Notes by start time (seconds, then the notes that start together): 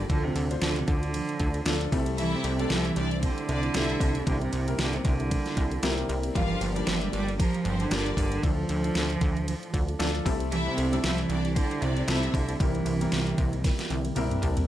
Already playing: G2 D3 G3 A#3 D4 F4 G4 A#4 F5
0.09 D2 A2 D3 F3 D4 F4 A4, kick, ride
0.24 C3
0.35 D2 D4 F4 A4, ride
0.50 D4 F4 C5, ride
0.62 D2 D3 F3 D4 F4 A4, snare, ride
0.76 C3, ride
0.88 D2 D3 D4 F4 A4, kick, ride
1.03 ride
1.13 F3 D4 F4 A4, ride
1.29 ride
1.40 D2 D4 F4 A4, kick, ride
1.54 ride
1.65 D2 D3 F3 D4 F4 A4, snare, ride
1.81 ride
1.91 C2 C3 G3 A3 C4 E4 A4, kick, open hi-hat, ride
2.06 ride
2.17 C3 E3 G3 C4 E4 A4 E5, ride
2.34 C3
2.43 C2 C4 E4 A4, ride
2.58 G3 A3 C4 D4 E4 A4 D5, ride
2.70 C2 C3 F3 G3 C4 E4 A4 E5, snare, ride
2.85 E3, ride
2.96 C2 C4 D4 E4 A4 D5, ride
3.11 ride
3.22 D3 G3 C4 E4 A4 C5, kick, ride
3.38 ride
3.48 C2 C4 D4 E4 A4 D5, ride
3.63 ride
3.74 C2 C3 G3 A3 C4 E4 A4 E5, snare, ride
3.90 ride
4.00 C2 C4 E4 A4, kick, open hi-hat, ride
4.15 ride
4.27 C2 G2 C3 D3 G3 A#3 C4 E4 G4 A#4, kick, ride
4.41 C3, ride
4.52 C2 A#3 E4 G4, ride
4.68 G3 A#3 C4 E4 A#4, ride
4.78 C2 C3 D3 G3 A#3 E4 G4, snare, ride
4.93 C3, ride
5.04 C2 D3 A#3 E4 G4, kick, ride
5.20 ride
5.31 G3 A#3 E4 G4, kick, ride
5.46 snare, ride
5.57 C2 A#3 E4 G4, kick, ride
5.71 ride
5.83 C2 C3 G3 A#3 C4 E4 G4 A#4, snare, ride
5.98 ride
6.09 C2 A#3 E4 G4, ride
6.23 ride
6.35 G1 G2 D3 E3 F3 G3 A#3 D4 F4 G4 A#4 F5, kick, ride
6.51 F3
6.60 G1 F3 A#3 D4 G4, ride
6.75 G3 A#3 D4 F4 G4 D5, ride
6.86 G1 G2 D3 F3 A#3 D4 E4 G4 E5, snare, ride
7.01 G3, ride
7.12 G1 F3 G3 A#3 D4 G4 D5, ride
7.28 ride
7.38 F3 A#3 D4 G4 A#4, kick, ride
7.54 ride
7.64 G1 F3 A#3 C4 D4 G4 C5, ride
7.80 D3, ride
7.91 G1 G2 D3 F3 G3 A#3 D4 F4 G4 A#4 D5, snare, ride
8.06 ride
8.17 G1 D3 F3 A#3 D4 G4, kick, open hi-hat, ride
8.32 ride
8.43 D2 A2 D3 F3 D4 F4 A4, kick, ride
8.69 D2 D4 F4 A4, ride
8.83 D4 F4 A4, ride
8.95 D2 D3 F3 D4 F4 A4, snare, ride
9.10 ride
9.21 D2 D4 F4 A4, kick, ride
9.37 ride
9.47 F3 D4 F4 A4, ride
9.63 ride
9.73 D2 D4 F4 A4, kick, ride
9.88 ride
9.99 D2 D3 F3 D4 F4 A4, snare, ride
10.15 ride
10.25 C2 C3 G3 A3 C4 E4 A4, kick, open hi-hat, ride
10.40 ride
10.51 C3 E3 G3 C4 E4 A4 E5, ride
10.67 C3
10.77 C2 C4 E4 A4, ride
10.92 G3 A3 C4 D4 E4 A4 D5, ride
11.03 C2 C3 F3 G3 C4 E4 A4 E5, snare, ride
11.18 E3, ride
11.29 C2 C4 D4 E4 A4 D5, ride
11.45 ride
11.55 D3 G3 C4 E4 A4 C5, kick, ride
11.71 ride
11.82 C2 C3 C4 D4 E4 A4 D5, ride
11.97 ride
12.07 C2 C3 G3 A3 C4 E4 A4 E5, snare, ride
12.23 ride
12.33 C2 D3 C4 E4 A4, kick, open hi-hat, ride
12.49 ride
12.59 C2 G2 C3 E3 G3 A#3 C4 E4 G4 A#4, kick, ride
12.75 ride
12.85 C2 A#3 E4 G4, ride
13.01 G3 A#3 C4 E4 A#4, ride
13.11 C2 C3 G3 A#3 E4 G4, snare, ride
13.27 ride
13.37 C2 A#3 E4 G4, kick, ride
13.53 ride
13.63 G3 A#3 E4 G4, kick, snare, ride
13.79 snare, ride
13.90 C2 A#3 E4 G4, high tom, ride
14.05 high tom, ride
14.16 C2 G2 C3 G3 A#3 C4 E4 G4 A#4 E5, mid tom, ride
14.31 mid tom, ride
14.42 C2 A#3 E4 G4 A5, floor tom, ride
14.57 floor tom, ride